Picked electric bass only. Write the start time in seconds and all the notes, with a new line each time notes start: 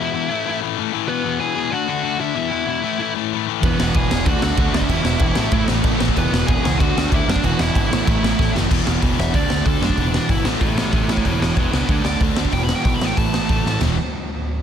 3.63 E1
3.80 E1
3.95 E1
4.11 E1
4.26 D2
4.43 D2
4.58 D2
4.74 D2
4.89 E1
5.04 E1
5.20 E1
5.37 A1
5.52 A1
5.70 A1
5.84 A1
6.02 A1
6.17 E1
6.33 E1
6.49 E1
6.66 C#2
6.80 D2
6.97 D2
7.12 D2
7.28 F#2
7.44 E1
7.60 E1
7.75 G#1
7.92 A1
8.07 A1
8.23 A1
8.39 A1
8.55 F#1
8.71 E1
8.86 E1
9.03 E1
9.19 E1
9.34 D2
9.51 D2
9.66 D2
9.82 F#2
9.97 E1
10.29 G#1
10.45 A1
10.61 A1
10.93 A1
11.08 A1
11.25 E1
11.40 E1
11.57 E1
11.72 C#2
11.89 D2
12.05 D2
12.21 D2
12.38 D2
12.52 E1
12.85 B1
13.02 A1
13.17 A1
13.50 A1
13.66 A1
13.83 E1